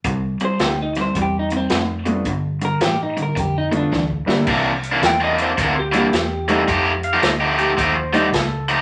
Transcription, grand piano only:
X:1
M:4/4
L:1/8
Q:"Swing" 1/4=109
K:Cmix
V:1 name="Grand piano"
z6 z [A,=B,DF] | z4 z [A,=B,DF] z [C,G,_B,DE] | z4 z [G,B,DE] z [G,A,C_E] | z4 z [G,A,C_E] z2 |]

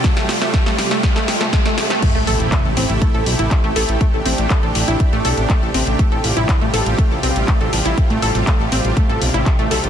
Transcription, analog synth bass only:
X:1
M:4/4
L:1/16
Q:1/4=121
K:Am
V:1 name="Analog synth bass" clef=bass
z16 | z A,,, A,,, A,,, z A,,, A,,, A,,, z A,,, B,,, A,,, z A,,, A,,, A,,, | z A,,, A,,, A,,, z A,,, A,,, A,,, z A,,, B,,, A,,, z A,,, A,,, A,,, | z A,,, A,,, A,,, z A,,, A,,, A,,, z A,,, B,,, A,,, z A,,, A,,, A,,, |
z A,,, A,,, A,,, z A,,, A,,, A,,, z A,,, B,,, A,,, z A,,, B,,, A,,, |]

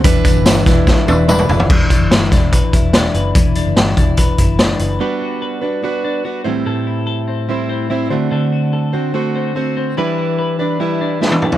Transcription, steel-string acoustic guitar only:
X:1
M:4/4
L:1/8
Q:1/4=145
K:Em
V:1 name="Steel-string acoustic guitar"
[E,G,DEB]3 [DEB]2 [DEB] [G,DEB] [DEB] | z8 | z8 | [G,B,DFB]3 [DFB] [B,DFB]2 [B,DFB] [A,,E,G,CEc]- |
[A,,E,G,CEc]4 [G,CEc]2 [G,CEc] [D,A,CFc]- | [D,A,CFc]3 [CFc] [A,CFc]2 [A,CFc]2 | [E,G,DEB]3 [DEB] [G,DEB]2 [G,DEB]2 |]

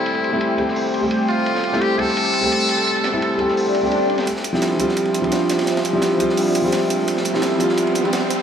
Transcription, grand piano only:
X:1
M:4/4
L:1/16
Q:"Swing 16ths" 1/4=171
K:Dm
V:1 name="Grand piano"
[G,A,CG]3 [G,A,CE]3 [G,A,CG]4- [G,A,CG] [G,A,CG]4- [G,A,CG]- | [G,A,CG]3 [G,A,CE]3 [G,A,CG]4- [G,A,CG] [G,A,CG]4- [G,A,CG]- | [G,A,CG]3 [G,A,CE]3 [G,A,CG]4- [G,A,CG] [G,A,CG]4- [G,A,CG] | z3 [F,G,CE]3 [F,G,CF]4- [F,G,CF] [F,G,CF]4- [F,G,CF]- |
[F,G,CF]3 [F,G,CE]3 [F,G,CF]4- [F,G,CF] [F,G,CF]4- [F,G,CF]- | [F,G,CF]3 [F,G,CE]3 [F,G,CF]4- [F,G,CF] [F,G,CF]4- [F,G,CF] |]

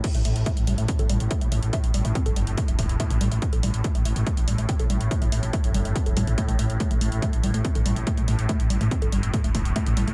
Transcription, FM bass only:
X:1
M:4/4
L:1/16
Q:1/4=142
K:Cmix
V:1 name="FM bass" clef=bass
z A,,, A,,, A,,, z A,,, A,,, A,,, z A,,, A,,, A,,, z B,,, A,,, A,,, | z A,,, A,,, A,,, z G,,, G,,, G,,, z E,,, E,,, E,,, z A,,, A,,, A,,, | z A,,, A,,, A,,, z A,,, A,,, A,,, z A,,, A,,, A,,, z B,,, A,,, A,,, | z A,,, A,,, A,,, z G,,, G,,, G,,, z E,,, A,,, A,,, z A,,, A,,, A,,, |
z A,,, A,,, A,,, z A,,, A,,, A,,, z A,,, A,,, A,,, z B,,, A,,, A,,, | z A,,, A,,, A,,, z G,,, G,,, G,,, z E,,, E,,, E,,, z A,,, A,,, A,,, |]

